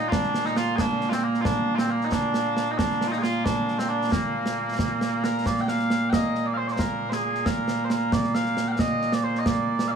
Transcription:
Already playing: bagpipes A#2 A#3
0.08 bagpipes D4 F4, concert bass drum, snare
0.23 snare
0.34 snare
0.46 bagpipes D#4, snare
0.56 bagpipes F4, snare
0.76 bagpipes D4 G#4, concert bass drum, snare
1.01 snare
1.09 bagpipes C4 F4, snare
1.23 bagpipes A#3
1.34 snare
1.41 bagpipes D4 F4
1.45 concert bass drum, snare
1.75 bagpipes C4 F4, snare
1.90 bagpipes A#3
2.01 bagpipes D#4, snare
2.12 bagpipes D4, concert bass drum, snare
2.34 snare
2.57 snare
2.71 bagpipes D#4
2.78 bagpipes D4, concert bass drum, snare
2.90 snare
3.01 snare
3.08 bagpipes D#4 F4
3.13 snare
3.18 bagpipes G#4
3.22 bagpipes F4, snare
3.45 bagpipes D4, concert bass drum, snare
3.68 snare
3.79 bagpipes C4, snare
3.89 bagpipes D4
4.01 snare
4.12 bagpipes A#3, concert bass drum, snare
4.46 snare
4.68 snare
4.79 concert bass drum, snare
5.01 snare
5.24 bagpipes A#4, snare
5.46 bagpipes D5, concert bass drum, snare
5.57 bagpipes G5, snare
5.68 bagpipes F5, snare
5.79 snare
5.90 snare
6.10 bagpipes D#5 G5, concert bass drum, snare
6.35 snare
6.46 bagpipes D5
6.54 bagpipes C5 F5
6.68 bagpipes D5, snare
6.72 bagpipes C5
6.79 bagpipes A#4, concert bass drum, snare
7.09 bagpipes G#4 C5, snare
7.24 bagpipes G#4
7.35 snare
7.46 bagpipes A#4, concert bass drum, snare
7.68 snare
7.85 bagpipes C5
7.90 bagpipes A#4, snare
8.12 bagpipes D5, concert bass drum, snare
8.24 snare
8.35 bagpipes F5, snare
8.46 snare
8.57 snare
8.68 bagpipes F5 G5
8.79 bagpipes D#5, concert bass drum, snare
9.01 snare
9.12 bagpipes D5, snare
9.24 bagpipes C5
9.35 bagpipes D#5, snare
9.46 bagpipes D5, concert bass drum, snare
9.79 snare
9.88 bagpipes D5 F5

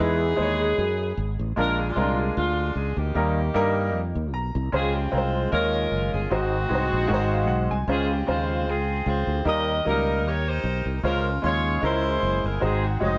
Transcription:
Already playing: grand piano G#3
0.00 fretless electric bass E2, grand piano E3 D#4 E4 B4, saxophone section B3 D#4 G#4
0.36 fretless electric bass D#2, grand piano G#3 D#4 G#4 C5
0.43 grand piano C#5
0.78 fretless electric bass F#2
1.17 fretless electric bass G#1
1.39 fretless electric bass A1
1.56 fretless electric bass A#1, grand piano A#2 G#3 D4 F4 A#4, saxophone section D4 F4 A#4
1.80 saxophone section G#4
1.88 saxophone section G#3 D4 F4
1.96 fretless electric bass C2, grand piano G#3 C4 F4 A#4
2.01 grand piano D4
2.20 saxophone section G#4
2.36 fretless electric bass D2, saxophone section G#3 D4 F4
2.75 fretless electric bass C#2, saxophone section G#4
2.97 fretless electric bass D2, saxophone section A#3 D#4 G4
3.14 fretless electric bass D#2, grand piano D#3 G3 A#3 D#4 A#4
3.54 fretless electric bass G2, grand piano G3 A#3 D#4 A#4
3.94 fretless electric bass F2
4.15 fretless electric bass D#2
4.33 fretless electric bass B1, grand piano A#5
4.55 fretless electric bass C2
4.72 fretless electric bass C#2, grand piano C#3 G#3 C#4 F4 C5, saxophone section C4 F4 G#4
4.95 saxophone section G4
5.12 fretless electric bass C2, grand piano G#3 C4 F4 A#4, saxophone section F4 G#4 C5
5.18 grand piano C5
5.51 fretless electric bass D#2, grand piano D#3 G#3 D#4 F4 C#5, saxophone section C#4 F4 A#4
5.91 fretless electric bass F#1
6.14 fretless electric bass G1, saxophone section G#4
6.30 fretless electric bass G#1, grand piano G#2 G#3 D#4 F#4 C5, saxophone section C4 D#4 F#4
6.69 fretless electric bass C2, grand piano G#3 D#4 F#4 B4
6.75 grand piano C5
6.93 fretless electric bass A#1
7.08 fretless electric bass G#1, grand piano G#2 G#3 D#4 F#4 A#4
7.14 grand piano C5
7.31 grand piano F5
7.47 fretless electric bass B1, grand piano F#5
7.71 fretless electric bass C2, grand piano G#5
7.88 fretless electric bass C#2, grand piano C#3 G#3 C#4 F4 C5, saxophone section C4 F4 G#4
8.11 saxophone section G4
8.27 fretless electric bass D#2, grand piano C#3 G#3 F4 C5, saxophone section F4 G#4 C5
8.67 fretless electric bass C#2, saxophone section C4 F4 G#4
9.06 fretless electric bass C#2, saxophone section F4 G#4 C5
9.27 fretless electric bass D2
9.45 fretless electric bass D#2, grand piano D#3 G3 A#3 D#4 A#4, saxophone section G4 A#4 D#5
9.85 fretless electric bass C#2, grand piano F#3 A#3 D#4 A#4, saxophone section D#4 G4 A#4
9.89 grand piano G3
10.24 fretless electric bass D#2, saxophone section G4 A#4 C#5
10.46 saxophone section D#4 G4 C5
10.63 fretless electric bass B1
10.85 fretless electric bass C2
11.03 fretless electric bass C#2, grand piano C#3 G#3 C#4 F4 C5, saxophone section F4 A#4
11.42 fretless electric bass D#2, grand piano G#3 C#4 F4 C6, saxophone section F4 G#4 C#5
11.81 fretless electric bass C#2, grand piano C#3 G#3 C#4 E4 A#4, saxophone section E4 G#4 C5
12.23 fretless electric bass F#1
12.44 fretless electric bass G1, saxophone section A#4
12.60 fretless electric bass G#1, grand piano G#2 G#3 D#4 F#4 C5, saxophone section C4 D#4 G#4
12.86 saxophone section F#4
13.00 fretless electric bass F1, grand piano G#3 D#4 F#4 C#5, saxophone section D#4 F#4 C5
13.06 grand piano D#5

